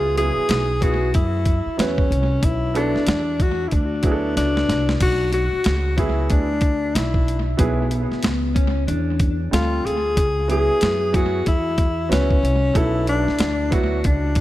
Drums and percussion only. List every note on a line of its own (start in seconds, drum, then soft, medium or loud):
0.17 closed hi-hat medium
0.49 snare loud
0.49 closed hi-hat medium
0.82 kick medium
0.82 closed hi-hat medium
1.14 kick medium
1.14 closed hi-hat medium
1.45 kick medium
1.45 closed hi-hat medium
1.79 snare medium
1.79 closed hi-hat loud
1.98 kick medium
2.12 closed hi-hat medium
2.43 kick loud
2.43 closed hi-hat medium
2.75 closed hi-hat medium
2.96 snare soft
3.07 snare loud
3.07 closed hi-hat medium
3.40 kick medium
3.40 closed hi-hat medium
3.71 kick medium
3.71 closed hi-hat medium
4.03 kick medium
4.03 closed hi-hat medium
4.37 snare medium
4.37 closed hi-hat loud
4.57 snare medium
4.69 snare medium
4.69 closed hi-hat medium
4.89 snare medium
5.00 kick loud
5.00 closed hi-hat medium
5.00 crash medium
5.33 closed hi-hat medium
5.64 snare loud
5.64 closed hi-hat medium
5.98 kick medium
5.98 closed hi-hat medium
6.30 kick medium
6.30 closed hi-hat medium
6.61 kick medium
6.61 closed hi-hat medium
6.95 snare medium
6.95 closed hi-hat loud
7.14 kick medium
7.28 closed hi-hat medium
7.59 kick loud
7.59 closed hi-hat medium
7.91 closed hi-hat medium
8.12 snare soft
8.23 snare loud
8.23 closed hi-hat medium
8.56 kick medium
8.56 closed hi-hat medium
8.88 closed hi-hat medium
9.20 kick medium
9.20 closed hi-hat medium
9.53 snare loud
9.53 closed hi-hat loud
9.87 closed hi-hat medium
10.17 kick loud
10.17 closed hi-hat medium
10.50 closed hi-hat medium
10.81 snare loud
10.81 closed hi-hat medium
11.14 kick medium
11.14 closed hi-hat medium
11.46 kick medium
11.46 closed hi-hat medium
11.78 kick medium
11.78 closed hi-hat medium
12.12 snare medium
12.12 closed hi-hat medium
12.30 kick medium
12.45 closed hi-hat medium
12.75 kick loud
12.75 closed hi-hat medium
13.07 closed hi-hat medium
13.28 snare soft
13.39 snare loud
13.39 closed hi-hat medium
13.72 kick loud
13.72 closed hi-hat medium
14.04 kick medium
14.04 closed hi-hat medium
14.35 kick medium
14.35 closed hi-hat medium